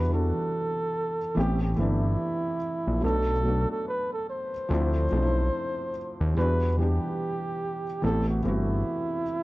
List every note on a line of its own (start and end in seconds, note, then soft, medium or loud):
0.00 0.33 E2 medium
0.00 0.08 E3 medium
0.00 0.10 G3 medium
0.00 0.11 B3 medium
0.00 0.12 D4 medium
0.00 0.14 F#4 medium
0.00 0.15 B4 medium
0.08 1.16 E3 medium
0.08 1.16 G3 soft
0.08 1.17 B3 medium
0.08 1.18 D4 medium
0.13 1.18 F#4 medium
0.13 1.39 A4 medium
1.35 1.75 A1 loud
1.35 1.71 E3 medium
1.35 1.71 A3 medium
1.35 1.72 B3 medium
1.35 1.73 C4 medium
1.35 1.60 G4 medium
1.40 1.73 G4 medium
1.63 1.77 G4 medium
1.76 2.17 G1 medium
1.76 2.55 E3 medium
1.76 2.56 A3 medium
1.76 2.56 B3 medium
1.76 2.57 C4 medium
1.76 3.00 E4 medium
1.81 2.58 D4 medium
2.87 3.02 A#1 medium
3.00 3.66 B1 loud
3.00 3.31 F#3 medium
3.00 3.31 A3 medium
3.00 3.32 B3 medium
3.00 3.32 D4 medium
3.05 3.33 F#4 medium
3.05 3.67 A4 loud
3.43 4.50 F#3 medium
3.43 4.50 A3 medium
3.43 4.51 B3 medium
3.47 4.52 D4 medium
3.47 4.52 F#4 medium
3.71 3.85 A4 medium
3.88 4.10 B4 medium
4.13 4.27 A4 medium
4.30 6.21 C5 medium
4.69 5.09 D2 loud
4.69 5.04 F3 medium
4.69 5.05 A3 medium
4.69 5.06 C4 medium
4.69 5.06 D4 medium
4.74 5.07 E4 medium
5.11 5.51 B1 medium
5.11 5.89 F3 medium
5.11 5.89 A3 medium
5.11 5.90 C4 medium
5.15 5.91 D4 medium
5.15 5.21 D#4 medium
5.22 5.95 E4 medium
6.21 6.36 D#2 medium
6.35 7.00 E2 medium
6.35 6.64 E3 medium
6.35 6.65 G3 medium
6.35 6.66 B3 medium
6.35 6.75 B4 medium
6.39 6.66 D4 medium
6.39 6.67 F#4 medium
6.77 7.83 E3 medium
6.77 7.84 G3 medium
6.77 7.85 B3 medium
6.77 7.85 D4 medium
6.77 7.99 G4 medium
6.82 7.86 G4 medium
8.02 8.42 A1 loud
8.02 8.38 E3 medium
8.02 8.38 A3 medium
8.02 8.39 B3 medium
8.02 8.39 C4 medium
8.02 8.26 A4 medium
8.07 8.40 G4 medium
8.29 8.48 F#4 medium
8.43 8.84 G1 medium
8.43 9.21 E3 medium
8.43 9.22 A3 medium
8.43 9.23 B3 medium
8.43 9.23 C4 medium
8.43 9.43 E4 medium
8.48 9.24 F#4 medium